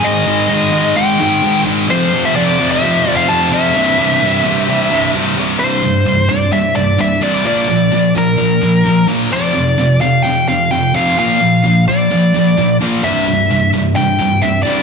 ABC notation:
X:1
M:4/4
L:1/16
Q:1/4=129
K:Cmix
V:1 name="Lead electric guitar"
_e8 g6 z2 | c3 e d3 e4 f a2 e2- | e12 z4 | c6 d2 e2 d2 e2 d2 |
d6 B8 z2 | d6 f2 g2 f2 g2 f2 | f6 d8 z2 | e6 z2 g4 e2 d2 |]
V:2 name="Distorted electric guitar" clef=bass
[_A,,_E,_A,]2 [A,,E,A,]2 [A,,E,A,]2 [A,,E,A,]2 [A,,E,A,]2 [A,,E,A,]2 [A,,E,A,]2 [A,,E,A,]2 | [F,,C,F,]2 [F,,C,F,]2 [F,,C,F,]2 [F,,C,F,]2 [F,,C,F,]2 [F,,C,F,]2 [F,,C,F,]2 [F,,C,F,]2 | [C,,G,,C,]2 [C,,G,,C,]2 [C,,G,,C,]2 [C,,G,,C,]2 [C,,G,,C,]2 [C,,G,,C,]2 [C,,G,,C,]2 [C,,G,,C,]2 | [C,,G,,C,]2 [C,,G,,]2 [C,,G,,]2 [C,,G,,]2 [C,,G,,]2 [C,,G,,]2 [C,,G,,]2 [C,,G,,C,]2 |
[B,,F,B,]2 [B,,F,]2 [B,,F,]2 [B,,F,]2 [B,,F,]2 [B,,F,]2 [B,,F,]2 [B,,F,B,]2 | [F,,C,F,]2 [F,,C,]2 [F,,C,]2 [F,,C,]2 [F,,C,]2 [F,,C,]2 [F,,C,]2 [F,,C,F,]2 | [B,,F,B,]2 [B,,F,]2 [B,,F,]2 [B,,F,]2 [B,,F,]2 [B,,F,]2 [B,,F,]2 [B,,F,B,]2 | [C,,G,,C,]2 [C,,G,,]2 [C,,G,,]2 [C,,G,,]2 [C,,G,,]2 [C,,G,,]2 [C,,G,,]2 [C,,G,,C,]2 |]